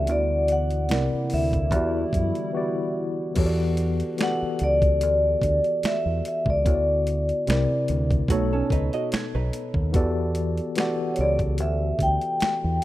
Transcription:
0.00 0.10 A4 medium
0.00 0.11 E5 medium
0.00 0.86 F#5 medium
0.07 0.92 D2 medium
0.07 0.90 D3 medium
0.07 0.89 E3 medium
0.07 0.89 B3 medium
0.07 0.90 B3 medium
0.07 0.89 E4 medium
0.07 0.91 F#4 medium
0.07 0.52 D5 medium
0.07 closed hi-hat medium
0.11 0.92 D5 medium
0.48 1.35 F#5 medium
0.48 closed hi-hat medium
0.71 closed hi-hat soft
0.89 1.08 C2 loud
0.89 1.64 C3 medium
0.89 3.34 D3 medium
0.89 1.71 A#3 medium
0.89 1.64 C4 medium
0.89 1.65 E4 medium
0.89 1.65 A#4 medium
0.89 1.66 D5 medium
0.89 finger snap medium
0.89 snare loud
0.89 closed hi-hat medium
1.30 1.71 D2 medium
1.30 open hi-hat soft
1.34 2.93 E5 medium
1.53 kick medium
1.53 closed hi-hat soft
1.71 2.04 E2 medium
1.71 2.46 E3 medium
1.71 3.35 G3 medium
1.71 2.47 B3 medium
1.71 3.35 E4 medium
1.71 2.47 F#4 medium
1.71 2.48 G4 medium
1.71 kick medium
1.71 closed hi-hat medium
1.76 2.48 D5 medium
2.13 2.31 F#2 medium
2.13 kick medium
2.13 closed hi-hat medium
2.35 closed hi-hat soft
2.53 3.28 E3 medium
2.53 3.28 B3 medium
2.53 3.29 F#4 medium
2.53 3.30 G4 medium
2.57 3.30 D5 medium
3.35 4.01 E2 medium
3.35 4.10 E3 medium
3.35 4.11 B3 medium
3.35 4.11 F#4 medium
3.35 4.12 G4 medium
3.35 4.12 A4 medium
3.35 kick medium
3.35 closed hi-hat medium
3.35 crash medium
3.39 3.45 C#5 medium
3.46 4.16 D5 medium
3.77 closed hi-hat medium
4.00 closed hi-hat soft
4.17 5.67 E3 medium
4.17 5.67 B3 medium
4.17 5.68 F#4 medium
4.17 5.68 G4 medium
4.17 5.69 A4 medium
4.17 finger snap medium
4.17 snare loud
4.17 closed hi-hat medium
4.21 5.69 D5 medium
4.21 4.63 F#5 loud
4.42 muted fingered electric bass stroke soft
4.59 5.03 C#2 medium
4.59 closed hi-hat medium
4.63 5.89 D5 medium
4.82 kick medium
4.82 closed hi-hat soft
5.01 5.34 D2 medium
5.01 closed hi-hat medium
5.42 5.59 D2 medium
5.42 kick medium
5.42 closed hi-hat medium
5.64 closed hi-hat soft
5.83 6.23 E5 medium
5.83 finger snap medium
5.83 muted fingered electric bass stroke soft
5.83 snare loud
5.83 closed hi-hat medium
6.06 6.20 E2 medium
6.25 6.49 E5 medium
6.25 closed hi-hat medium
6.46 6.67 C#2 medium
6.46 kick medium
6.50 8.09 D5 medium
6.64 7.30 D2 medium
6.64 7.39 D3 medium
6.64 7.40 B3 medium
6.64 7.40 E4 soft
6.64 7.41 F#4 medium
6.64 kick loud
6.64 closed hi-hat medium
6.68 6.74 C#5 medium
6.75 7.45 D5 medium
7.07 closed hi-hat medium
7.29 closed hi-hat soft
7.47 7.65 C2 loud
7.47 8.29 C3 medium
7.47 8.30 C4 medium
7.47 8.30 E4 medium
7.47 8.31 A#4 medium
7.47 finger snap medium
7.47 snare loud
7.47 closed hi-hat medium
7.51 8.32 D5 medium
7.88 8.21 D2 medium
7.88 closed hi-hat medium
8.11 kick medium
8.11 closed hi-hat soft
8.28 8.61 B1 medium
8.28 9.78 B2 medium
8.28 8.52 A3 medium
8.28 9.78 B3 medium
8.28 9.79 D#4 medium
8.28 8.51 F#4 medium
8.28 9.80 A4 medium
8.28 kick medium
8.28 closed hi-hat medium
8.32 9.80 C#5 medium
8.53 8.71 C#4 medium
8.53 8.71 A4 medium
8.70 8.88 C#2 medium
8.70 8.93 D#4 medium
8.70 8.92 B4 medium
8.70 kick medium
8.70 closed hi-hat medium
8.93 9.12 F#4 medium
8.93 9.12 D#5 medium
8.93 closed hi-hat soft
9.12 9.33 C#5 medium
9.12 finger snap medium
9.12 muted fingered electric bass stroke soft
9.12 snare loud
9.12 closed hi-hat medium
9.35 9.50 B1 medium
9.35 9.92 D#4 medium
9.35 9.92 B4 medium
9.53 closed hi-hat medium
9.74 9.95 D#2 medium
9.74 kick medium
9.92 10.59 E2 loud
9.92 10.68 E3 medium
9.92 10.68 B3 medium
9.92 10.68 F#4 medium
9.92 10.69 G4 medium
9.92 10.69 A4 medium
9.92 kick loud
9.92 closed hi-hat medium
9.96 10.70 D5 medium
10.35 closed hi-hat medium
10.57 closed hi-hat soft
10.75 12.25 E3 medium
10.75 12.25 B3 medium
10.75 12.26 F#4 medium
10.75 12.26 G4 medium
10.75 12.27 A4 medium
10.75 finger snap medium
10.75 snare loud
10.75 closed hi-hat medium
10.79 12.27 D5 medium
10.79 11.14 F#5 medium
11.14 11.19 C#5 medium
11.14 closed hi-hat medium
11.19 11.60 C#2 medium
11.19 11.39 D5 medium
11.39 kick medium
11.39 closed hi-hat soft
11.58 11.92 D2 medium
11.58 12.02 E5 medium
11.58 closed hi-hat medium
11.99 12.17 D2 medium
11.99 12.79 G5 medium
11.99 kick medium
11.99 closed hi-hat medium
12.21 closed hi-hat soft
12.40 finger snap medium
12.40 muted fingered electric bass stroke soft
12.40 snare loud
12.40 closed hi-hat medium
12.64 12.79 E2 medium

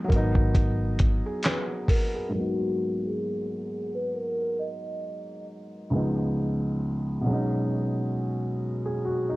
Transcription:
0.00 0.10 F3 medium
0.00 0.10 B3 medium
0.00 0.11 D#4 medium
0.04 2.27 F#3 medium
0.04 1.88 A#4 medium
0.10 1.20 G#1 loud
0.10 2.30 B3 medium
0.10 kick medium
0.10 closed hi-hat medium
0.16 2.33 D#4 medium
0.35 kick medium
0.55 kick medium
0.55 closed hi-hat medium
0.99 kick loud
0.99 closed hi-hat medium
1.26 1.44 G#4 medium
1.43 1.87 B4 medium
1.43 snare medium
1.43 clap medium
1.43 closed hi-hat medium
1.88 2.13 A#4 medium
1.88 kick medium
1.88 open hi-hat medium
2.15 2.57 G#4 medium
2.29 5.85 G#2 medium
2.29 5.87 F#3 medium
2.35 5.88 A#3 medium
2.35 5.90 B3 medium
2.35 3.06 F#4 medium
2.41 5.91 D#4 medium
3.06 3.90 G#4 medium
3.95 4.12 B4 medium
4.14 4.59 A#4 medium
4.59 5.44 D#5 medium
5.90 7.25 C#2 medium
5.90 7.26 F3 medium
5.90 7.26 G#3 medium
5.94 7.27 B3 medium
5.94 7.28 D#4 medium
7.21 9.36 B2 medium
7.21 9.36 F#3 medium
7.27 9.36 G#3 medium
7.27 9.36 C#4 medium
7.33 8.61 D#4 medium
8.86 9.04 G#4 medium
9.05 9.28 F#4 medium
9.29 9.36 D#4 medium

